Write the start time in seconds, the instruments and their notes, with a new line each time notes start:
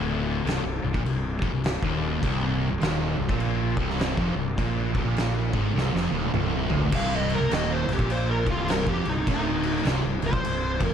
Already playing: fingered electric bass D1, distorted electric guitar D2
0.45 fingered electric bass C1, distorted electric guitar C2, snare, crash
0.63 fingered electric bass C1, distorted electric guitar C2
0.83 fingered electric bass C1, distorted electric guitar C2
0.94 fingered electric bass A#1, distorted electric guitar A#2, kick
1.05 fingered electric bass C1, distorted electric guitar C2, crash
1.42 fingered electric bass F1, distorted electric guitar F2, kick
1.52 fingered electric bass C1, distorted electric guitar C2
1.64 snare, crash
1.82 fingered electric bass D#1, distorted electric guitar D#2, kick
2.23 fingered electric bass C1, distorted electric guitar C2, kick, crash
2.71 fingered electric bass C1, distorted electric guitar C2
2.81 fingered electric bass D#1, distorted electric guitar D#2, snare, crash
3.18 fingered electric bass C1, distorted electric guitar C2
3.29 fingered electric bass A#1, distorted electric guitar A#2, kick
3.40 crash
3.77 fingered electric bass C1, distorted electric guitar C2, kick
3.90 snare
3.99 snare, crash
4.17 fingered electric bass F1, distorted electric guitar F2, kick
4.35 fingered electric bass C1, distorted electric guitar C2
4.58 fingered electric bass A#1, distorted electric guitar A#2, kick, crash
4.94 fingered electric bass C1, distorted electric guitar C2, kick
5.04 fingered electric bass A#1, distorted electric guitar A#2
5.16 snare, crash
5.53 fingered electric bass G#1, distorted electric guitar G#2, kick
5.74 fingered electric bass C1, distorted electric guitar C2, snare
5.93 fingered electric bass F1, distorted electric guitar F2, snare
6.11 fingered electric bass D#1, distorted electric guitar D#2
6.23 high tom
6.34 fingered electric bass C1, distorted electric guitar C2, mid tom
6.70 fingered electric bass D1, distorted electric guitar D2, floor tom
6.82 floor tom
6.92 fingered electric bass C1, distorted electric guitar C2, lead electric guitar F5, kick, crash
7.16 lead electric guitar D#5
7.29 crash
7.34 lead electric guitar A#4
7.40 fingered electric bass C1, distorted electric guitar C2
7.51 fingered electric bass D#1, distorted electric guitar D#2, lead electric guitar D#5, snare, crash
7.72 lead electric guitar C5
7.88 fingered electric bass C1, distorted electric guitar C2, snare, crash
7.93 lead electric guitar G4
7.99 fingered electric bass A#1, distorted electric guitar A#2, kick
8.10 lead electric guitar C5, crash
8.31 lead electric guitar A#4
8.46 fingered electric bass C1, distorted electric guitar C2, lead electric guitar F4, kick, crash
8.68 lead electric guitar A#4, snare, crash
8.87 fingered electric bass F1, distorted electric guitar F2, lead electric guitar G4, kick
9.05 fingered electric bass C1, distorted electric guitar C2, crash
9.09 lead electric guitar D#4
9.27 fingered electric bass D1, distorted electric guitar D2, lead electric guitar D#4, kick, crash
9.63 crash
9.77 snare
9.85 fingered electric bass C1, distorted electric guitar C2, snare, crash
10.04 fingered electric bass C1, distorted electric guitar C2
10.22 fingered electric bass C1, distorted electric guitar C2, crash
10.26 lead electric guitar C5
10.32 fingered electric bass A#1, distorted electric guitar A#2, kick
10.44 fingered electric bass C1, distorted electric guitar C2, crash
10.80 fingered electric bass F1, distorted electric guitar F2, kick, crash
10.84 lead electric guitar A#4
10.89 distorted electric guitar C2